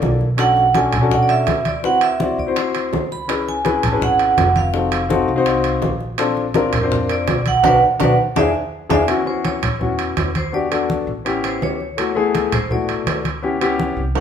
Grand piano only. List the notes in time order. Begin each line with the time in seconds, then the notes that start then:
Already playing: A#3 D4 E4 A4
0.37 C#4 D4 F#4 A4
0.74 C#4 D4 F#4 A4
1.01 C#4 D4 F#4 A4
1.83 C4 E4 F#4 B4
2.19 C4 E4 F#4 D5
2.47 C4 E4 F#4 C5
3.28 C#4 E4 G#4 B4
3.64 C#4 E4 G#4 B4
3.92 C#4 E4 G#4 B4
4.73 C4 D#4 F#4 A4
5.09 C4 D#4 F#4 A4
5.36 C4 D#4 F#4 C5
6.18 C4 D4 F4 A4
6.54 C4 D4 F4 A#4
6.81 C4 D4 F4 C5
7.63 B3 D4 F#4
8.00 B3 D4 F#4
8.36 D4 E4 G#4
8.89 D4 E4 G#4
9.07 B3 C#4 E4 F#4
9.25 B3 C#4 E4 F#4
9.79 B3 C#4 E4 F#4
10.52 B3 D4 F#4 G4
10.70 B3 D4 F#4 A4
11.25 B3 C#4 E4 G4
11.97 A3 B3 E4 F#4
12.15 A3 B3 E4 G#4
12.70 A3 B3 E4 F#4
13.42 B3 C#4 E4 G4
13.61 B3 C#4 E4 G4
14.15 G3 A#3 E4 F#4